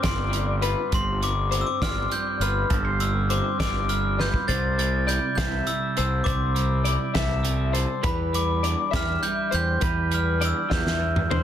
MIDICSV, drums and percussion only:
0, 0, Header, 1, 2, 480
1, 0, Start_track
1, 0, Key_signature, 0, "major"
1, 0, Tempo, 592885
1, 749, Time_signature, 6, 3, 24, 8
1, 9255, End_track
2, 0, Start_track
2, 0, Title_t, "Drums"
2, 28, Note_on_c, 9, 42, 105
2, 30, Note_on_c, 9, 36, 81
2, 30, Note_on_c, 9, 38, 109
2, 109, Note_off_c, 9, 42, 0
2, 111, Note_off_c, 9, 36, 0
2, 111, Note_off_c, 9, 38, 0
2, 267, Note_on_c, 9, 42, 73
2, 348, Note_off_c, 9, 42, 0
2, 505, Note_on_c, 9, 42, 75
2, 586, Note_off_c, 9, 42, 0
2, 746, Note_on_c, 9, 42, 88
2, 749, Note_on_c, 9, 36, 105
2, 827, Note_off_c, 9, 42, 0
2, 830, Note_off_c, 9, 36, 0
2, 992, Note_on_c, 9, 42, 67
2, 1073, Note_off_c, 9, 42, 0
2, 1231, Note_on_c, 9, 42, 72
2, 1312, Note_off_c, 9, 42, 0
2, 1471, Note_on_c, 9, 36, 83
2, 1476, Note_on_c, 9, 42, 90
2, 1478, Note_on_c, 9, 38, 114
2, 1552, Note_off_c, 9, 36, 0
2, 1557, Note_off_c, 9, 42, 0
2, 1559, Note_off_c, 9, 38, 0
2, 1712, Note_on_c, 9, 42, 67
2, 1793, Note_off_c, 9, 42, 0
2, 1953, Note_on_c, 9, 42, 66
2, 2033, Note_off_c, 9, 42, 0
2, 2187, Note_on_c, 9, 42, 82
2, 2191, Note_on_c, 9, 36, 109
2, 2268, Note_off_c, 9, 42, 0
2, 2271, Note_off_c, 9, 36, 0
2, 2430, Note_on_c, 9, 42, 69
2, 2511, Note_off_c, 9, 42, 0
2, 2672, Note_on_c, 9, 42, 68
2, 2753, Note_off_c, 9, 42, 0
2, 2913, Note_on_c, 9, 36, 79
2, 2915, Note_on_c, 9, 42, 98
2, 2918, Note_on_c, 9, 38, 119
2, 2994, Note_off_c, 9, 36, 0
2, 2996, Note_off_c, 9, 42, 0
2, 2999, Note_off_c, 9, 38, 0
2, 3150, Note_on_c, 9, 42, 77
2, 3231, Note_off_c, 9, 42, 0
2, 3397, Note_on_c, 9, 38, 59
2, 3478, Note_off_c, 9, 38, 0
2, 3511, Note_on_c, 9, 36, 79
2, 3592, Note_off_c, 9, 36, 0
2, 3633, Note_on_c, 9, 36, 90
2, 3636, Note_on_c, 9, 42, 87
2, 3714, Note_off_c, 9, 36, 0
2, 3717, Note_off_c, 9, 42, 0
2, 3878, Note_on_c, 9, 42, 76
2, 3959, Note_off_c, 9, 42, 0
2, 4119, Note_on_c, 9, 42, 82
2, 4200, Note_off_c, 9, 42, 0
2, 4353, Note_on_c, 9, 36, 78
2, 4354, Note_on_c, 9, 42, 105
2, 4356, Note_on_c, 9, 38, 122
2, 4434, Note_off_c, 9, 36, 0
2, 4435, Note_off_c, 9, 42, 0
2, 4437, Note_off_c, 9, 38, 0
2, 4588, Note_on_c, 9, 42, 70
2, 4669, Note_off_c, 9, 42, 0
2, 4831, Note_on_c, 9, 42, 73
2, 4912, Note_off_c, 9, 42, 0
2, 5070, Note_on_c, 9, 36, 107
2, 5071, Note_on_c, 9, 42, 90
2, 5151, Note_off_c, 9, 36, 0
2, 5152, Note_off_c, 9, 42, 0
2, 5311, Note_on_c, 9, 42, 65
2, 5392, Note_off_c, 9, 42, 0
2, 5548, Note_on_c, 9, 42, 75
2, 5629, Note_off_c, 9, 42, 0
2, 5787, Note_on_c, 9, 42, 87
2, 5789, Note_on_c, 9, 38, 114
2, 5790, Note_on_c, 9, 36, 83
2, 5868, Note_off_c, 9, 42, 0
2, 5870, Note_off_c, 9, 38, 0
2, 5871, Note_off_c, 9, 36, 0
2, 6028, Note_on_c, 9, 42, 69
2, 6109, Note_off_c, 9, 42, 0
2, 6271, Note_on_c, 9, 42, 67
2, 6352, Note_off_c, 9, 42, 0
2, 6505, Note_on_c, 9, 42, 81
2, 6509, Note_on_c, 9, 36, 113
2, 6586, Note_off_c, 9, 42, 0
2, 6590, Note_off_c, 9, 36, 0
2, 6755, Note_on_c, 9, 42, 67
2, 6836, Note_off_c, 9, 42, 0
2, 6993, Note_on_c, 9, 42, 77
2, 7074, Note_off_c, 9, 42, 0
2, 7233, Note_on_c, 9, 36, 90
2, 7233, Note_on_c, 9, 42, 102
2, 7236, Note_on_c, 9, 38, 119
2, 7314, Note_off_c, 9, 36, 0
2, 7314, Note_off_c, 9, 42, 0
2, 7317, Note_off_c, 9, 38, 0
2, 7473, Note_on_c, 9, 42, 76
2, 7554, Note_off_c, 9, 42, 0
2, 7710, Note_on_c, 9, 42, 68
2, 7791, Note_off_c, 9, 42, 0
2, 7944, Note_on_c, 9, 42, 98
2, 7951, Note_on_c, 9, 36, 116
2, 8025, Note_off_c, 9, 42, 0
2, 8032, Note_off_c, 9, 36, 0
2, 8189, Note_on_c, 9, 42, 72
2, 8270, Note_off_c, 9, 42, 0
2, 8432, Note_on_c, 9, 42, 83
2, 8513, Note_off_c, 9, 42, 0
2, 8672, Note_on_c, 9, 38, 70
2, 8674, Note_on_c, 9, 36, 83
2, 8753, Note_off_c, 9, 38, 0
2, 8755, Note_off_c, 9, 36, 0
2, 8796, Note_on_c, 9, 38, 59
2, 8877, Note_off_c, 9, 38, 0
2, 9037, Note_on_c, 9, 47, 73
2, 9118, Note_off_c, 9, 47, 0
2, 9159, Note_on_c, 9, 45, 100
2, 9240, Note_off_c, 9, 45, 0
2, 9255, End_track
0, 0, End_of_file